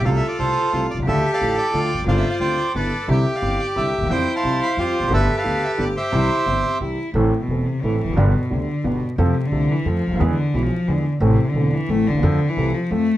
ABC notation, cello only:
X:1
M:3/4
L:1/16
Q:1/4=178
K:C
V:1 name="Cello" clef=bass
F12 | G8 F4 | F8 A4 | G12 |
E8 F4 | G12 | E4 C4 E4 | [K:Am] A,,3 B,,3 C,2 E,2 E,2 |
D, B,,3 C, D,3 B,,3 z | C,3 D,3 E,2 F,4 | E, D,3 E, F,3 D,3 z | C,3 D,3 E,2 A,2 D,2- |
D,3 E,3 F,2 A,4 |]